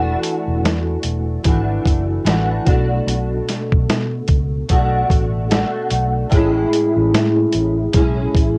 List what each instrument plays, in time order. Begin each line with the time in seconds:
Already playing: fingered electric bass E1, steel-string acoustic guitar E3 A3 D4 F#4
0.23 closed hi-hat
0.48 fingered electric bass E1
0.63 fingered electric bass E2, snare, closed hi-hat
1.03 fingered electric bass E1, closed hi-hat
1.44 fingered electric bass G#1, steel-string acoustic guitar E3 A3 D4 F#4, kick, closed hi-hat
1.85 fingered electric bass F#1, kick, closed hi-hat
2.25 fingered electric bass A1, steel-string acoustic guitar E3 A3 D4 F#4, snare, closed hi-hat
2.65 fingered electric bass B1, steel-string acoustic guitar D4 F#4, kick, closed hi-hat
2.69 steel-string acoustic guitar B2 A3
3.07 fingered electric bass B1, closed hi-hat
3.49 snare, closed hi-hat
3.72 fingered electric bass B1, kick
3.89 fingered electric bass B2, snare, closed hi-hat
4.28 fingered electric bass C#2, kick, closed hi-hat
4.69 fingered electric bass B1, steel-string acoustic guitar B2 A3 D4 F#4, kick, closed hi-hat
5.10 fingered electric bass A1, kick, closed hi-hat
5.49 steel-string acoustic guitar B2 A3 D4, snare, closed hi-hat
5.53 steel-string acoustic guitar F#4
5.91 fingered electric bass B1, closed hi-hat
6.30 fingered electric bass A1, steel-string acoustic guitar A2 G#3 C#4, kick, closed hi-hat
6.36 steel-string acoustic guitar E4
6.73 closed hi-hat
6.97 fingered electric bass A1
7.13 fingered electric bass A2, snare, closed hi-hat
7.53 fingered electric bass A1, closed hi-hat
7.92 fingered electric bass B1, steel-string acoustic guitar A2 G#3 C#4 E4, kick, closed hi-hat
8.35 fingered electric bass A1, kick, closed hi-hat